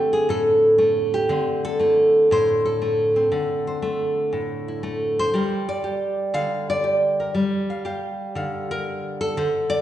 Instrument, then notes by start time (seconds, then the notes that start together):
nylon-string guitar
Already playing: D3 A3 C4 G4
0.13 G#4
0.29 A2 A4
0.78 A3
1.14 G4
1.29 D3 C4
1.65 A4
1.79 A3 E4
2.31 A2 C5
2.65 A4
2.82 A3
3.16 C4
3.32 D3
3.67 C5
3.82 A3
4.33 A2
4.68 E4
4.83 A3
5.19 C5
5.34 G3 G4 A#4
5.69 D5
5.84 G4
6.34 D3 F5
6.70 D5
6.84 G4
7.20 A#4
7.35 G3
7.70 F5
7.85 G4 F5
8.35 D3 F5
8.71 A#4
9.21 A4
9.37 D3 C5
9.70 D5